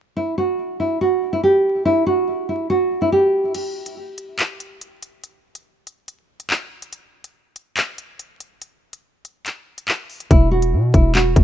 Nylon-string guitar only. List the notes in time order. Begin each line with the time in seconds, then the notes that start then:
0.17 E4
0.38 F#4
0.80 E4
1.01 F#4
1.33 E4
1.43 G4
1.85 E4
2.07 F#4
2.49 E4
2.70 F#4
3.02 E4
3.12 G4
10.31 E4
10.51 F#4
10.94 E4
11.15 F#4